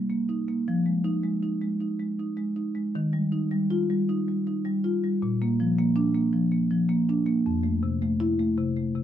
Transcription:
0, 0, Header, 1, 2, 480
1, 0, Start_track
1, 0, Tempo, 565504
1, 570, Time_signature, 4, 2, 24, 8
1, 7669, End_track
2, 0, Start_track
2, 0, Title_t, "Marimba"
2, 0, Program_c, 0, 12
2, 0, Note_on_c, 0, 55, 51
2, 84, Note_on_c, 0, 58, 51
2, 181, Note_off_c, 0, 55, 0
2, 246, Note_on_c, 0, 63, 57
2, 344, Note_off_c, 0, 58, 0
2, 410, Note_on_c, 0, 58, 53
2, 505, Note_off_c, 0, 63, 0
2, 571, Note_off_c, 0, 58, 0
2, 577, Note_on_c, 0, 53, 63
2, 729, Note_on_c, 0, 56, 55
2, 887, Note_on_c, 0, 63, 67
2, 987, Note_off_c, 0, 56, 0
2, 1048, Note_on_c, 0, 56, 58
2, 1147, Note_off_c, 0, 63, 0
2, 1211, Note_on_c, 0, 63, 51
2, 1309, Note_off_c, 0, 56, 0
2, 1371, Note_on_c, 0, 56, 54
2, 1472, Note_off_c, 0, 63, 0
2, 1512, Note_off_c, 0, 53, 0
2, 1533, Note_on_c, 0, 63, 51
2, 1632, Note_off_c, 0, 56, 0
2, 1695, Note_on_c, 0, 56, 47
2, 1791, Note_off_c, 0, 63, 0
2, 1862, Note_on_c, 0, 63, 49
2, 1952, Note_off_c, 0, 56, 0
2, 2011, Note_on_c, 0, 56, 54
2, 2115, Note_off_c, 0, 63, 0
2, 2174, Note_on_c, 0, 63, 53
2, 2272, Note_off_c, 0, 56, 0
2, 2337, Note_on_c, 0, 56, 53
2, 2435, Note_off_c, 0, 63, 0
2, 2500, Note_off_c, 0, 56, 0
2, 2507, Note_on_c, 0, 51, 75
2, 2657, Note_on_c, 0, 55, 60
2, 2819, Note_on_c, 0, 63, 58
2, 2917, Note_off_c, 0, 55, 0
2, 2980, Note_on_c, 0, 55, 67
2, 3077, Note_off_c, 0, 63, 0
2, 3144, Note_on_c, 0, 65, 68
2, 3237, Note_off_c, 0, 55, 0
2, 3311, Note_on_c, 0, 55, 66
2, 3399, Note_off_c, 0, 65, 0
2, 3436, Note_off_c, 0, 51, 0
2, 3473, Note_on_c, 0, 63, 63
2, 3562, Note_off_c, 0, 55, 0
2, 3635, Note_on_c, 0, 55, 52
2, 3722, Note_off_c, 0, 63, 0
2, 3793, Note_on_c, 0, 63, 58
2, 3884, Note_off_c, 0, 55, 0
2, 3948, Note_on_c, 0, 55, 68
2, 4043, Note_off_c, 0, 63, 0
2, 4110, Note_on_c, 0, 65, 70
2, 4200, Note_off_c, 0, 55, 0
2, 4277, Note_on_c, 0, 55, 59
2, 4360, Note_off_c, 0, 65, 0
2, 4427, Note_off_c, 0, 55, 0
2, 4434, Note_on_c, 0, 46, 71
2, 4598, Note_on_c, 0, 58, 66
2, 4753, Note_on_c, 0, 53, 64
2, 4842, Note_off_c, 0, 58, 0
2, 4909, Note_on_c, 0, 58, 69
2, 5000, Note_off_c, 0, 53, 0
2, 5057, Note_on_c, 0, 62, 81
2, 5157, Note_off_c, 0, 58, 0
2, 5215, Note_on_c, 0, 58, 63
2, 5311, Note_off_c, 0, 62, 0
2, 5354, Note_off_c, 0, 46, 0
2, 5373, Note_on_c, 0, 53, 59
2, 5471, Note_off_c, 0, 58, 0
2, 5533, Note_on_c, 0, 58, 53
2, 5630, Note_off_c, 0, 53, 0
2, 5693, Note_on_c, 0, 53, 58
2, 5789, Note_off_c, 0, 58, 0
2, 5848, Note_on_c, 0, 58, 62
2, 5947, Note_off_c, 0, 53, 0
2, 6020, Note_on_c, 0, 62, 72
2, 6104, Note_off_c, 0, 58, 0
2, 6164, Note_on_c, 0, 58, 67
2, 6269, Note_off_c, 0, 62, 0
2, 6326, Note_off_c, 0, 58, 0
2, 6333, Note_on_c, 0, 41, 71
2, 6480, Note_on_c, 0, 57, 63
2, 6645, Note_on_c, 0, 48, 63
2, 6738, Note_off_c, 0, 57, 0
2, 6808, Note_on_c, 0, 57, 73
2, 6900, Note_off_c, 0, 48, 0
2, 6961, Note_on_c, 0, 64, 87
2, 7062, Note_off_c, 0, 57, 0
2, 7125, Note_on_c, 0, 57, 71
2, 7219, Note_off_c, 0, 64, 0
2, 7258, Note_off_c, 0, 41, 0
2, 7279, Note_on_c, 0, 48, 70
2, 7380, Note_off_c, 0, 57, 0
2, 7439, Note_on_c, 0, 57, 57
2, 7536, Note_off_c, 0, 48, 0
2, 7599, Note_on_c, 0, 48, 63
2, 7669, Note_off_c, 0, 48, 0
2, 7669, Note_off_c, 0, 57, 0
2, 7669, End_track
0, 0, End_of_file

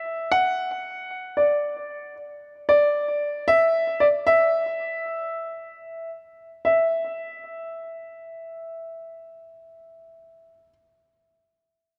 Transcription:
0, 0, Header, 1, 2, 480
1, 0, Start_track
1, 0, Tempo, 500000
1, 11507, End_track
2, 0, Start_track
2, 0, Title_t, "Grand piano"
2, 0, Program_c, 0, 0
2, 0, Note_on_c, 0, 76, 95
2, 303, Note_on_c, 0, 78, 107
2, 337, Note_off_c, 0, 76, 0
2, 1314, Note_on_c, 0, 74, 80
2, 1347, Note_off_c, 0, 78, 0
2, 2037, Note_off_c, 0, 74, 0
2, 2580, Note_on_c, 0, 74, 99
2, 3337, Note_on_c, 0, 76, 109
2, 3362, Note_off_c, 0, 74, 0
2, 3843, Note_on_c, 0, 74, 94
2, 3860, Note_off_c, 0, 76, 0
2, 3900, Note_off_c, 0, 74, 0
2, 4095, Note_on_c, 0, 76, 102
2, 5827, Note_off_c, 0, 76, 0
2, 6383, Note_on_c, 0, 76, 82
2, 10269, Note_off_c, 0, 76, 0
2, 11507, End_track
0, 0, End_of_file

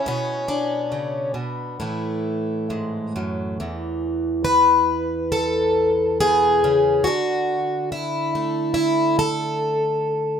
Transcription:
0, 0, Header, 1, 2, 480
1, 0, Start_track
1, 0, Tempo, 863309
1, 33, Time_signature, 4, 2, 24, 8
1, 993, Tempo, 904977
1, 1953, Tempo, 875912
1, 2913, Tempo, 862069
1, 4353, Tempo, 843882
1, 5755, End_track
2, 0, Start_track
2, 0, Title_t, "Twelve-string acoustic guitar"
2, 0, Program_c, 0, 25
2, 34, Note_on_c, 0, 47, 66
2, 43, Note_on_c, 0, 61, 80
2, 269, Note_on_c, 0, 62, 66
2, 510, Note_on_c, 0, 49, 54
2, 739, Note_off_c, 0, 47, 0
2, 743, Note_off_c, 0, 49, 0
2, 745, Note_on_c, 0, 47, 50
2, 754, Note_off_c, 0, 61, 0
2, 992, Note_off_c, 0, 47, 0
2, 992, Note_off_c, 0, 62, 0
2, 999, Note_on_c, 0, 45, 61
2, 1007, Note_on_c, 0, 52, 43
2, 1478, Note_on_c, 0, 44, 55
2, 1718, Note_off_c, 0, 44, 0
2, 1720, Note_on_c, 0, 42, 61
2, 1953, Note_off_c, 0, 42, 0
2, 1955, Note_on_c, 0, 40, 61
2, 1956, Note_off_c, 0, 45, 0
2, 2418, Note_on_c, 0, 71, 92
2, 2897, Note_on_c, 0, 69, 92
2, 3383, Note_off_c, 0, 69, 0
2, 3383, Note_off_c, 0, 71, 0
2, 3390, Note_on_c, 0, 68, 105
2, 3393, Note_on_c, 0, 47, 58
2, 3630, Note_off_c, 0, 47, 0
2, 3632, Note_on_c, 0, 49, 69
2, 3855, Note_on_c, 0, 66, 95
2, 3869, Note_off_c, 0, 49, 0
2, 3871, Note_off_c, 0, 68, 0
2, 3872, Note_on_c, 0, 50, 77
2, 3873, Note_off_c, 0, 40, 0
2, 3879, Note_off_c, 0, 52, 0
2, 4343, Note_off_c, 0, 66, 0
2, 4345, Note_on_c, 0, 64, 80
2, 4590, Note_on_c, 0, 57, 44
2, 4805, Note_off_c, 0, 64, 0
2, 4812, Note_on_c, 0, 64, 90
2, 5063, Note_off_c, 0, 64, 0
2, 5067, Note_on_c, 0, 69, 96
2, 5755, Note_off_c, 0, 50, 0
2, 5755, Note_off_c, 0, 57, 0
2, 5755, Note_off_c, 0, 69, 0
2, 5755, End_track
0, 0, End_of_file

